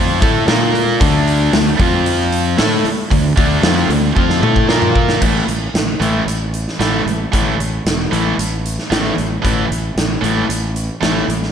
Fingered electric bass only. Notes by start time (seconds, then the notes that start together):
Already playing: F2
0.22 A2
0.48 A#2
1.01 D2
1.53 D2
1.79 F2
2.59 A2
2.85 muted fingered electric bass stroke
3.11 D2
3.37 D2
3.63 F2
3.89 D2
4.16 F2
4.42 A2
4.68 A#2
5.21 A1
5.47 A1
5.74 A1
6.00 A1
6.26 A1
6.79 A1
7.06 A1
7.34 A1
7.59 A1
7.85 E1
8.12 A1
8.38 A1
8.91 A1
9.18 A1
9.45 A1
9.71 A1
9.96 A1
10.22 A1
10.49 A1
11.02 A1
11.28 A1